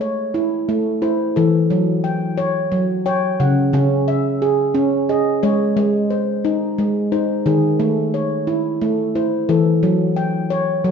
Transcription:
Already playing: A3
0.01 C#5
0.34 E4
0.69 A3
1.02 E4 C5
1.36 E3 A4
1.70 F#3
2.04 G5
2.38 C#5
2.72 F#3
3.06 C#5 G5
3.40 C#3 F#5
3.73 C#3 C#4
4.08 E5
4.42 G#4
4.75 C#4
5.09 G#4 D#5
5.43 G#3 C#5
5.77 G#3
6.10 C5
6.45 D#4
6.78 G#3
7.12 D#4 C5
7.46 D#3 G#4
7.80 A3
8.14 C#5
8.47 E4
8.81 A3
9.15 E4 C5
9.49 E3 A4
9.83 F#3
10.16 G5
10.50 C#5
10.84 F#3

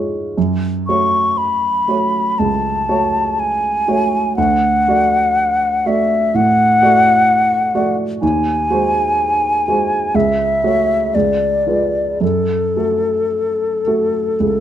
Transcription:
Already playing: G#2 G#3 F4 C#5
0.38 F#2
0.87 A3 F#4 C#5 C#6
1.38 B5
1.88 A3 F#4 C#5
2.39 C#2 A5
2.89 A3 F#4 C#5
3.39 G#5
3.88 A3 F#4 C#5
4.36 D2 F#5
4.88 A3 F#4 D5
5.86 A3 F#4 D5 E5
6.34 A2 F#5
6.82 A3 F#4 D5
7.75 A3 F#4 D5
8.22 D#2 G#5
8.70 G#3 F#4 C5
9.68 G#3 F#4 C5
10.14 C#2 E5
10.64 A3 F#4 C#5
11.15 C#2 D5
11.66 G#3 F4 B4
12.20 F#2 A4
12.76 A3 F#4 A4
13.86 A3 F#4 A4
14.40 C#2

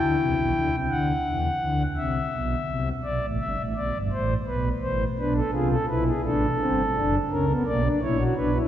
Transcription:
Already playing: E4 G5
0.01 D2 D3
0.18 C2 C3
0.36 B1 B2
0.54 D2 D3
0.72 C2 C3
0.90 D2 D3 F#5
1.26 E2 E3
1.61 D2 D3
1.96 C2 C3 E5
2.33 B1 B2
2.68 C2 C3
3.04 B1 B2 D5
3.22 A1 A2
3.40 G1 G2 E5
3.58 A1 A2
3.76 B1 B2 D5
3.94 G1 G2
4.12 A1 A2 C5
4.47 B1 B2 B4
4.83 A1 A2 C5
5.18 B1 B2 D4 B4
5.36 A4
5.53 C2 C3 F4 G#4
5.71 A4
5.89 B1 B2 E4 B4
6.07 G#4
6.24 A1 A2 D4 A4
6.60 G1 G2 C4
6.96 F#1 F#2 D4
7.30 C#2 C#3 C#4 A#4
7.48 B3
7.66 B1 B2 A#3 D5
7.84 D4
8.02 A#1 A#2 E4 C#5
8.19 F#4
8.36 B1 B2 D4 B4
8.54 E4

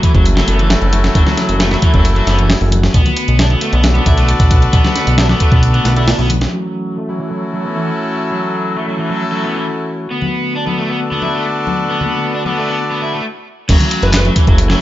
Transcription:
Already playing: E3 A3 C#4 E4 F#4 A4
0.03 E3, kick, closed hi-hat
0.15 F#1 F#3, kick, closed hi-hat
0.26 closed hi-hat
0.37 F#3, snare, closed hi-hat, low conga
0.48 F#1 B3, closed hi-hat, muted conga
0.59 E3, closed hi-hat
0.70 snare, closed hi-hat
0.82 F#1, closed hi-hat
0.93 closed hi-hat, muted conga, high conga
1.04 snare, closed hi-hat
1.15 F#1 F#3, kick, closed hi-hat
1.26 snare, closed hi-hat, muted conga, high conga, low conga
1.37 snare, closed hi-hat
1.49 F#1, closed hi-hat
1.60 A3, snare, closed hi-hat
1.71 F#3 A3 C#4 E4 F#4 A4, snare, closed hi-hat, muted conga, high conga
1.82 E3, kick, closed hi-hat
1.94 F#1 F#3, kick, closed hi-hat
2.05 closed hi-hat
2.16 F#3, closed hi-hat
2.27 F#1 B3, snare, closed hi-hat
2.39 E3, closed hi-hat
2.50 snare, closed hi-hat, open hi-hat
2.61 F#1, closed hi-hat
2.71 closed hi-hat, high conga
2.83 snare, closed hi-hat
2.94 B1 D3 A3 B3, kick, closed hi-hat
3.05 closed hi-hat, muted conga, high conga, low conga
3.17 closed hi-hat
3.28 B1, closed hi-hat
3.39 D4, snare, closed hi-hat
3.49 B3 D4 F#4 A4 B4 D5, closed hi-hat, muted conga, high conga
3.61 A3, closed hi-hat
3.73 B1 B3, closed hi-hat
3.84 snare, closed hi-hat
3.95 B3, closed hi-hat, low conga
4.06 B1 E4, kick, closed hi-hat, muted conga
4.17 A3, closed hi-hat
4.29 closed hi-hat
4.40 B1, kick, closed hi-hat
4.50 kick, closed hi-hat, muted conga, high conga
4.62 closed hi-hat
4.73 B1 B3, kick, closed hi-hat
4.84 snare, closed hi-hat, muted conga, high conga, low conga
4.96 snare, closed hi-hat
5.07 B1, closed hi-hat
5.18 D4, snare, closed hi-hat
5.29 B3 D4 F#4 A4 B4 D5, snare, closed hi-hat, muted conga, high conga
5.40 A3, kick, closed hi-hat
5.52 B1 B3, kick, closed hi-hat
5.63 closed hi-hat
5.74 B3, closed hi-hat
5.85 B1 B3, snare, closed hi-hat
5.96 D4 E4 F#4 A4 B4 E5, closed hi-hat
6.08 D4, snare, closed hi-hat, open hi-hat
6.19 B1 B3, closed hi-hat
6.30 closed hi-hat, high conga
6.41 snare, closed hi-hat
6.53 E3 F#3 A3 C#4 F#4
6.97 A3
7.08 F#3 A3 C#4 E4 F#4 A4
7.20 E3
7.31 F#3
7.54 F#3
7.65 B3
7.76 E3
8.32 F#3
8.76 A3
8.88 F#3 A3 C#4 E4 F#4 A4
8.99 E3
9.10 F#3
9.32 F#3
9.43 B3
9.55 E3
10.11 D3 A3 B3
10.22 muted conga, high conga, low conga
10.55 D4
10.66 B3 D4 F#4 A4 B4 D5, muted conga, high conga
10.78 A3
10.89 B3
11.12 B3, low conga
11.22 E4, muted conga
11.34 A3
11.67 muted conga, high conga
11.90 B3
12.01 muted conga, high conga, low conga
12.34 D4
12.45 B3 D4 F#4 A4 B4 D5, muted conga, high conga
12.57 A3
12.68 B3
12.91 B3
13.02 E4
13.13 A3
13.69 F#1 E3 F#3 A3 C#4 F#4, kick, closed hi-hat, crash
13.80 closed hi-hat, muted conga, low conga
13.91 closed hi-hat
14.03 F#1 B4, closed hi-hat
14.14 A3 B4, snare, clap, closed hi-hat
14.25 F#3 A3 C#4 E4 F#4 A4, closed hi-hat, muted conga, high conga
14.36 E3, kick, closed hi-hat
14.47 F#1 F#3, kick, closed hi-hat
14.58 closed hi-hat
14.70 F#3, snare, closed hi-hat, low conga

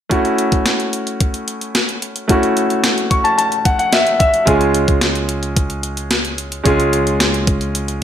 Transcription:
0.09 A3 C#4 E4 F#4, kick, closed hi-hat
0.25 closed hi-hat
0.38 closed hi-hat
0.52 kick, closed hi-hat
0.66 snare, closed hi-hat
0.80 closed hi-hat
0.93 closed hi-hat
1.07 closed hi-hat
1.20 kick, closed hi-hat
1.34 closed hi-hat
1.48 closed hi-hat
1.61 closed hi-hat
1.75 snare, closed hi-hat
1.89 closed hi-hat
2.02 closed hi-hat
2.16 closed hi-hat
2.28 A3 C#4 E4 F#4, kick, closed hi-hat
2.43 closed hi-hat
2.57 closed hi-hat
2.70 closed hi-hat
2.84 snare, closed hi-hat
2.98 closed hi-hat
3.10 C#6, kick, closed hi-hat
3.24 A5, closed hi-hat
3.38 A5, closed hi-hat
3.52 closed hi-hat
3.65 F#5, kick, closed hi-hat
3.79 F#5, closed hi-hat
3.92 E5, snare, closed hi-hat
4.07 closed hi-hat
4.20 E5, kick, closed hi-hat
4.34 closed hi-hat
4.46 C#2 G#3 C#4 F4 G#4, kick, closed hi-hat
4.61 closed hi-hat
4.74 closed hi-hat
4.88 kick, closed hi-hat
5.01 snare, closed hi-hat
5.15 closed hi-hat
5.29 closed hi-hat
5.43 closed hi-hat
5.57 kick, closed hi-hat
5.70 closed hi-hat
5.83 closed hi-hat
5.97 closed hi-hat
6.11 snare, closed hi-hat
6.25 closed hi-hat
6.38 closed hi-hat
6.52 closed hi-hat
6.64 C#2 G#3 C#4 F4 G#4, kick, closed hi-hat
6.80 closed hi-hat
6.93 closed hi-hat
7.07 closed hi-hat
7.20 snare, closed hi-hat
7.34 closed hi-hat
7.47 kick, closed hi-hat
7.61 closed hi-hat
7.75 closed hi-hat
7.88 closed hi-hat

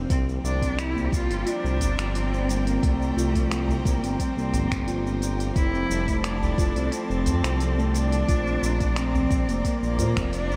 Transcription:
Already playing: C5, swell
0.09 C2 F3 C4 C5 D5 G5 A#5, kick, open hi-hat, shaker
0.29 shaker
0.44 C2 D4, shaker
0.62 C4, kick, open hi-hat, shaker
0.78 G3 E4, finger snap, open hi-hat, shaker
0.96 A#3, udu, shaker
1.06 G4
1.12 C2 F4, kick, open hi-hat, shaker
1.30 G1, open hi-hat, shaker
1.46 D4 F4, open hi-hat, shaker
1.64 C2 C4, shaker
1.80 G1, open hi-hat, udu, shaker
1.98 G1, finger snap, open hi-hat, shaker
2.15 C4, open hi-hat, shaker
2.33 C4, shaker
2.49 G3 A#3, open hi-hat, shaker
2.57 C4
2.65 A#3 C4, open hi-hat, shaker
2.83 C2 A3, kick, open hi-hat, shaker
3.02 shaker
3.17 C2 F4, shaker
3.35 C4, kick, open hi-hat, shaker
3.51 finger snap, open hi-hat, shaker
3.68 udu, shaker
3.85 C2 A#3, kick, open hi-hat, shaker
4.03 G1 C4, open hi-hat, shaker
4.19 G3 C4, kick, open hi-hat, shaker
4.37 C2 A#3, shaker
4.53 G1, open hi-hat, udu, shaker
4.71 G1, finger snap, kick, open hi-hat, udu, shaker
4.87 F4, open hi-hat, shaker
5.05 C4, shaker
5.22 open hi-hat, shaker
5.40 open hi-hat, shaker
5.56 F1 E4 A4 A5, kick, open hi-hat, shaker
5.73 C4, shaker
5.90 F1 G3, shaker
6.07 A3, kick, open hi-hat, shaker
6.24 D4, finger snap, open hi-hat, shaker
6.42 udu, shaker
6.58 F1 F4, kick, open hi-hat, shaker
6.76 C2 C4, open hi-hat, shaker
6.92 C4, open hi-hat, shaker
7.10 F1, shaker
7.26 F2, open hi-hat, udu, shaker
7.44 C2 C4, finger snap, open hi-hat, shaker
7.60 G3, open hi-hat, shaker
7.78 A3, shaker
7.94 D4, open hi-hat, shaker
8.12 open hi-hat, shaker
8.28 A#1 F4 D5 A#5, kick, open hi-hat, shaker
8.47 C4, shaker
8.63 A#1, shaker
8.80 kick, open hi-hat, shaker
8.96 C4, finger snap, open hi-hat, shaker
9.14 C4, udu, shaker
9.30 A#1 G3, kick, open hi-hat, shaker
9.48 F1 A#3, open hi-hat, shaker
9.65 A#3, kick, open hi-hat, shaker
9.83 A#1, shaker
9.98 A#2 F4, open hi-hat, udu, shaker
10.16 F1 C4, finger snap, kick, open hi-hat, udu, shaker
10.33 D4, open hi-hat, shaker
10.51 A#1, shaker

